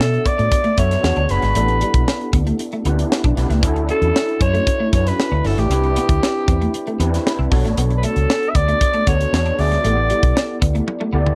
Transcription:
Already playing: tine electric piano B3 D4 F#4 A4 C#5 E5, alto saxophone A4
0.00 fingered electric bass B2, snare
0.14 closed hi-hat
0.25 clean electric guitar B3, alto saxophone D5, kick, closed hi-hat
0.38 fingered electric bass A2, clean electric guitar A3, closed hi-hat
0.51 muted clean electric guitar stroke, kick, closed hi-hat
0.64 clean electric guitar A3, closed hi-hat
0.77 fingered electric bass F#2, tine electric piano B3 D4 F#4 A4 E5, clean electric guitar B3, alto saxophone C#5, kick, closed hi-hat
0.91 snare, closed hi-hat
1.03 fingered electric bass E2, tine electric piano B3 D4 F#4 G#4 C#5, snare
1.16 fingered electric bass D2, clean electric guitar D4, closed hi-hat
1.29 fingered electric bass F#1, tine electric piano B3 D4 F#4 G#4 C#5, alto saxophone B4, muted clean electric guitar stroke, snare, closed hi-hat
1.42 fingered electric bass G#1, clean electric guitar G#3, snare, closed hi-hat
1.55 fingered electric bass A1, clean electric guitar A3, tine electric piano B3 D4 E4 G4 A4, closed hi-hat
1.68 muted clean electric guitar stroke, closed hi-hat
1.81 clean electric guitar G3, closed hi-hat
1.94 fingered electric bass B1, kick, closed hi-hat
2.08 muted clean electric guitar stroke, snare
2.21 closed hi-hat
2.33 fingered electric bass D2, clean electric guitar B3, kick, closed hi-hat
2.47 clean electric guitar A3, closed hi-hat
2.59 muted clean electric guitar stroke, closed hi-hat
2.72 clean electric guitar A3, closed hi-hat
2.85 fingered electric bass D2, tine electric piano B3 C#4 E4 G4 B4, clean electric guitar B3, closed hi-hat
2.92 tine electric piano D4
2.99 closed hi-hat
3.12 snare
3.24 fingered electric bass B1, clean electric guitar D4, kick, closed hi-hat
3.36 fingered electric bass B1, tine electric piano B3 D4 E4 G4 B4, muted clean electric guitar stroke, snare, closed hi-hat
3.50 fingered electric bass C#2, clean electric guitar A3, snare, closed hi-hat
3.63 fingered electric bass D2, tine electric piano C#4 D4 E4 F#4 A4, clean electric guitar D4, kick, closed hi-hat
3.76 muted clean electric guitar stroke, closed hi-hat
3.89 clean electric guitar B3, alto saxophone A4, closed hi-hat
4.02 fingered electric bass E2, closed hi-hat
4.15 muted clean electric guitar stroke, snare
4.29 closed hi-hat
4.41 fingered electric bass F#2, clean electric guitar C#4, alto saxophone C#5, kick, closed hi-hat
4.54 clean electric guitar A3, closed hi-hat
4.67 muted clean electric guitar stroke, kick, closed hi-hat
4.80 clean electric guitar A3
4.92 fingered electric bass F#2, clean electric guitar B3, tine electric piano C#4 D4 E4 F#4 B4, alto saxophone C#5, kick, closed hi-hat
5.07 alto saxophone B4, snare, closed hi-hat
5.20 snare
5.32 fingered electric bass D2, clean electric guitar C#4
5.44 fingered electric bass G1, tine electric piano C#4 D4 E4 F#4 A4, alto saxophone A4, muted clean electric guitar stroke, snare, open hi-hat
5.57 fingered electric bass A1, clean electric guitar A3, alto saxophone G4, snare, closed hi-hat
5.70 fingered electric bass C2, tine electric piano C4 D4 E4 G4 B4, clean electric guitar C4, closed hi-hat
5.83 muted clean electric guitar stroke, closed hi-hat
5.96 clean electric guitar B3, closed hi-hat
6.09 fingered electric bass D2, kick, closed hi-hat
6.23 muted clean electric guitar stroke, snare
6.48 fingered electric bass E2, clean electric guitar C4, kick, closed hi-hat
6.61 clean electric guitar A3, closed hi-hat
6.74 muted clean electric guitar stroke, closed hi-hat
6.87 clean electric guitar A3, closed hi-hat
6.99 fingered electric bass E2, clean electric guitar B3, tine electric piano C4 D4 E4 G4 B4, closed hi-hat
7.14 snare, closed hi-hat
7.26 tine electric piano B5, snare
7.39 fingered electric bass C2, clean electric guitar C4
7.51 fingered electric bass B1, tine electric piano B3 D4 F#4 A4 C#5, muted clean electric guitar stroke, kick, open hi-hat
7.64 fingered electric bass A1, clean electric guitar A3, snare, closed hi-hat
7.77 fingered electric bass B1, clean electric guitar B3, closed hi-hat
7.90 muted clean electric guitar stroke, closed hi-hat
7.98 alto saxophone B4
8.03 clean electric guitar A3, alto saxophone A4, closed hi-hat
8.16 fingered electric bass C#2, closed hi-hat
8.29 muted clean electric guitar stroke, snare
8.43 closed hi-hat
8.50 alto saxophone E5
8.55 fingered electric bass D2, clean electric guitar B3, alto saxophone D5, kick, closed hi-hat
8.68 clean electric guitar A3, closed hi-hat
8.81 muted clean electric guitar stroke, kick, closed hi-hat
8.94 clean electric guitar A3, closed hi-hat
9.07 fingered electric bass D2, tine electric piano B3 D4 F#4 A4 C#5, clean electric guitar B3, alto saxophone C#5, kick, closed hi-hat
9.21 closed hi-hat
9.33 fingered electric bass E2, tine electric piano B3 D4 F#4 G#4 C#5, snare
9.46 clean electric guitar D4, closed hi-hat
9.58 fingered electric bass D2, tine electric piano B3 D4 F#4 G#4 E5, alto saxophone D5, muted clean electric guitar stroke, snare, open hi-hat
9.71 clean electric guitar G#3, snare, closed hi-hat
9.84 fingered electric bass A1, clean electric guitar A3, tine electric piano B3 E4 G4 A4 D5, closed hi-hat
9.97 muted clean electric guitar stroke
10.10 clean electric guitar G3, closed hi-hat
10.23 fingered electric bass B1, kick, closed hi-hat
10.36 muted clean electric guitar stroke, snare
10.61 fingered electric bass D2, clean electric guitar B3, kick, closed hi-hat
10.75 clean electric guitar A3, closed hi-hat
10.87 muted clean electric guitar stroke, high tom
11.00 clean electric guitar A3, high tom
11.13 fingered electric bass D2, clean electric guitar B3, tine electric piano B3 E4 G4 A4 D5
11.26 mid tom

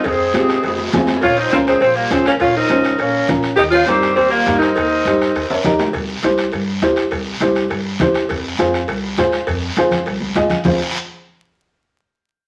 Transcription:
0.04 upright bass F2, saxophone section G#3 C4, clarinet G#4, bombo low, bombo rim, cowbell, high conga, long guiro
0.34 upright bass G#2, upright piano C4 F4 G4, saxophone section C4, clarinet G#4, bombo rim, cowbell, high conga, short guiro
0.38 saxophone section G#3
0.49 bombo rim, high timbale, short guiro
0.63 upright bass F2, bombo rim, cowbell, high conga, long guiro
0.68 low timbale
0.78 low timbale
0.88 cowbell, low timbale
0.93 upright bass F2, upright piano C4 F4 G#4, bombo low, bombo rim, high conga, low conga, low timbale, short guiro
1.07 bombo rim, low timbale, short guiro
1.16 low timbale
1.21 upright bass A#1, saxophone section C#4 F4, clarinet C#5, bombo low, bombo rim, cowbell, high conga, long guiro
1.37 saxophone section C4 D#4, clarinet C5
1.51 upright bass C#2, saxophone section F3 C4, upright piano C#4 F4 A#4, clarinet F4, bombo rim, cowbell, high conga, short guiro
1.67 saxophone section G#3 C4, clarinet G#4, bombo rim, short guiro
1.80 upright bass A#1, saxophone section F3 C4, clarinet F4, bombo rim, cowbell, high conga, long guiro
1.96 saxophone section G3 A#3, clarinet F4
2.10 upright bass C#2, saxophone section F3 C4, upright piano C#4 F4 G#4, clarinet F4, bombo low, bombo rim, cowbell, high conga, short guiro
2.26 saxophone section A#3 C#4, clarinet A#4, bombo rim, short guiro
2.40 upright bass A#1, saxophone section C#4 F4, clarinet C#5, bombo low, bombo rim, cowbell, high conga, long guiro
2.56 saxophone section C4 D#4, clarinet A#4
2.69 upright bass C#2, upright piano C#4 F4 C5, bombo rim, cowbell, high conga, short guiro
2.84 bombo rim, short guiro
2.98 upright bass A#1, saxophone section A#3 C#4, clarinet A#4, bombo rim, cowbell, high conga, long guiro
3.28 upright bass A#1, upright piano C#4 F4 A#4, bombo low, bombo rim, cowbell, high conga, low conga, short guiro
3.43 bombo rim, short guiro
3.56 upright bass D#2, saxophone section D#4 G4, clarinet D#5, bombo low, bombo rim, cowbell, high conga, long guiro
3.71 saxophone section C#4 F4, clarinet C5
3.87 upright bass G2, saxophone section G3 C4, upright piano D#4 G4 A#4, clarinet G4, bombo rim, cowbell, high conga, short guiro
4.02 bombo rim, short guiro
4.16 upright bass D#2, saxophone section G3 C4, clarinet G4, bombo rim, cowbell, high conga, long guiro
4.30 saxophone section G3 A#3, clarinet F4
4.46 upright bass G2, upright piano D#4 G4 A#4, bombo low, bombo rim, cowbell, high conga, low timbale, short guiro
4.59 saxophone section C4 D#4, clarinet A#4, bombo rim, short guiro
4.76 upright bass D#2, bombo low, bombo rim, cowbell, high conga, long guiro
5.05 upright bass G2, upright piano D#4 G4 C5, bombo rim, cowbell, high conga, short guiro
5.21 bombo rim, short guiro
5.35 upright bass D#2, bombo rim, cowbell, high conga, long guiro
5.50 upright bass F2, upright piano C#5, high timbale
5.64 upright bass D#2, upright piano D#4 G4 A#4 D#5, bombo low, bombo rim, cowbell, high conga, low conga, short guiro
5.79 upright bass C#2, upright piano G5, bombo rim, low timbale, short guiro
5.93 upright bass C2, bombo low, bombo rim, cowbell, high conga, long guiro
6.22 upright bass C2, upright piano E4 G4 C5, bombo rim, cowbell, high conga, short guiro
6.38 bombo rim, short guiro
6.52 upright bass G2, bombo rim, cowbell, high conga, long guiro
6.82 upright bass E2, upright piano E4 G4 C5, bombo low, bombo rim, cowbell, high conga, low timbale, short guiro
6.96 bombo rim, short guiro
7.11 upright bass C2, bombo low, bombo rim, cowbell, high conga, long guiro
7.41 upright bass C2, upright piano E4 G4 C5, bombo rim, cowbell, high conga, short guiro
7.55 bombo rim, short guiro
7.70 upright bass G2, bombo rim, cowbell, high conga, long guiro
8.00 upright bass E2, upright piano E4 G4 C5, bombo low, bombo rim, cowbell, high conga, low conga, low timbale, short guiro
8.14 bombo rim, short guiro
8.29 upright bass F2, bombo low, bombo rim, cowbell, high conga, long guiro
8.59 upright bass F2, upright piano F4 G#4 C5, bombo rim, cowbell, high conga, short guiro
8.74 bombo rim, short guiro
8.88 upright bass C2, bombo rim, cowbell, high conga, long guiro
9.18 upright bass G#2, upright piano F4 G#4 C5, bombo low, bombo rim, cowbell, high conga, low timbale, short guiro
9.32 bombo rim, short guiro
9.47 upright bass F2, bombo low, bombo rim, cowbell, high conga, long guiro
9.76 upright bass F2, upright piano F4 G#4 C5, bombo rim, cowbell, high conga, short guiro
9.91 bombo rim, low conga, short guiro
10.06 upright bass C2, bombo rim, cowbell, high conga, long guiro
10.20 high conga
10.35 upright bass G#2, upright piano F4 G#4 D#5, bombo low, bombo rim, cowbell, high conga, low timbale, short guiro
10.50 bombo rim, low conga, short guiro
10.64 upright bass F1, upright piano F4 G#4 C5, bombo low, low conga, low timbale, long guiro

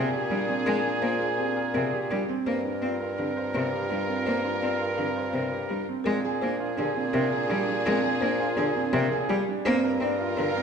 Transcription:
Already playing: bassoon A#2, string section D4 G#4, grand piano G#4, oboe G#4, marimba A#4
0.13 grand piano G4
0.31 cello G3, grand piano D4, marimba G4
0.48 grand piano C4
0.66 cello G#3, grand piano G#4, marimba A#4
0.84 grand piano D4
1.02 cello A#3, grand piano F4, marimba C5
1.20 grand piano G#4
1.38 grand piano C4, marimba G4
1.56 grand piano A#4
1.74 cello C3, grand piano G#4, marimba A#4
1.93 grand piano G4
2.11 cello G3, grand piano D4, marimba G4
2.29 grand piano C4
2.46 bassoon G2, cello A#3, string section F4 A#4, oboe A#4, grand piano A#4, marimba C5
2.65 grand piano D4
2.82 cello C4, grand piano F4, marimba D5
3.01 grand piano A#4
3.18 cello D3, grand piano C4, marimba G4
3.37 grand piano C5
3.54 cello C3, grand piano A#4, marimba C5
3.72 grand piano G4
3.90 cello G3, grand piano D4, marimba G4
4.08 grand piano C4
4.26 cello A#3, grand piano A#4, marimba C5
4.44 grand piano D4
4.62 cello C4, grand piano F4, marimba D5
4.80 grand piano A#4
4.98 cello D3, grand piano C4, marimba G4
5.16 grand piano C5
5.33 cello C3, grand piano A#4, marimba C5
5.52 grand piano G4
5.69 cello G3, grand piano D4, marimba G4
5.89 grand piano C4
6.04 bassoon A#2, cello G#3, grand piano C4, string section D4 G#4, oboe G#4, marimba A#4
6.25 grand piano G#4
6.41 cello A#3, grand piano D4, marimba C5
6.60 grand piano F4
6.78 cello D3, marimba G4, grand piano G#4
6.96 grand piano C4
7.13 cello C3, marimba A#4, grand piano A#4
7.32 grand piano G#4
7.48 cello G3, marimba G4, grand piano G4
7.68 grand piano D4
7.86 cello G#3, grand piano C4, marimba A#4
8.04 grand piano G#4
8.21 cello A#3, grand piano D4, marimba C5
8.40 grand piano F4
8.57 cello D3, marimba G4, grand piano G#4
8.76 grand piano C4
8.93 cello C3, grand piano A#4, marimba A#4
9.12 grand piano G#4
9.30 cello G3, marimba G4, grand piano G4
9.48 grand piano D4
9.65 bassoon G2, cello A#3, grand piano C4, string section F4 A#4, oboe A#4, marimba C5
9.84 grand piano A#4
10.00 cello C4, grand piano D4, marimba D5
10.20 grand piano F4
10.37 cello D3, marimba G4, grand piano A#4
10.57 grand piano C4

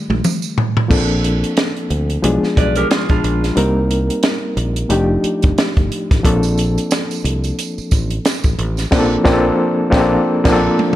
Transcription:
Already playing: reed electric piano D#3 G3 A3
0.10 fingered electric bass A#1, high tom
0.24 mid tom, tambourine
0.42 tambourine
0.58 floor tom
0.77 floor tom
0.88 fingered electric bass A#1, reed electric piano F3 A#3 C4 D4 A4, kick, crash
1.24 closed hi-hat
1.44 closed hi-hat
1.57 snare, closed hi-hat
1.77 closed hi-hat
1.90 fingered electric bass D2, closed hi-hat
2.10 closed hi-hat
2.22 fingered electric bass B1, reed electric piano F3 G#3 B3 D4 G#4, closed hi-hat
2.43 muted fingered electric bass stroke, snare
2.57 fingered electric bass B1, clean electric guitar B4 D5, kick, closed hi-hat
2.76 clean electric guitar G4 A#4, closed hi-hat
2.90 clean electric guitar F4 G#4, snare, closed hi-hat
3.09 fingered electric bass A#1, clean electric guitar D4 F4, kick, closed hi-hat
3.24 fingered electric bass A#1, closed hi-hat
3.44 snare, closed hi-hat
3.55 fingered electric bass C2, reed electric piano G3 A#3 C4 D#4 A#4, closed hi-hat
3.91 closed hi-hat
4.10 closed hi-hat
4.23 snare, closed hi-hat
4.57 fingered electric bass A#1, closed hi-hat
4.76 closed hi-hat
4.89 fingered electric bass F1, reed electric piano F3 A3 D4 D#4 G4, closed hi-hat
5.23 muted fingered electric bass stroke, closed hi-hat
5.42 fingered electric bass G1, kick, closed hi-hat
5.56 muted fingered electric bass stroke, snare, closed hi-hat
5.77 fingered electric bass G1, kick, closed hi-hat
5.92 closed hi-hat
6.11 fingered electric bass A1, kick, snare, closed hi-hat
6.23 fingered electric bass A#1, reed electric piano F3 A#3 C4 D4 A4, kick, closed hi-hat
6.43 closed hi-hat, tambourine
6.58 closed hi-hat, tambourine
6.78 closed hi-hat, tambourine
6.91 snare, closed hi-hat, tambourine
7.11 closed hi-hat, tambourine
7.24 fingered electric bass C2, closed hi-hat
7.44 closed hi-hat, tambourine
7.59 closed hi-hat, tambourine
7.78 muted fingered electric bass stroke, tambourine
7.91 fingered electric bass A1, kick, closed hi-hat, tambourine
8.11 closed hi-hat
8.25 snare, closed hi-hat, tambourine
8.44 fingered electric bass A1, kick, tambourine
8.58 fingered electric bass A1, closed hi-hat
8.77 snare, closed hi-hat, tambourine
8.91 fingered electric bass A#1, reed electric piano F3 A#3 C4 D4, kick, snare, crash
8.99 reed electric piano A4
9.24 fingered electric bass A#1, reed electric piano F3 A#3 C4 D4, kick, snare
9.32 reed electric piano A4
9.90 fingered electric bass A#1, reed electric piano F3 A#3 C4 D4, kick, snare
9.99 reed electric piano A4
10.44 fingered electric bass A#1, reed electric piano F3 A#3 C4 D4, kick, snare, crash
10.53 reed electric piano A4
10.79 high tom

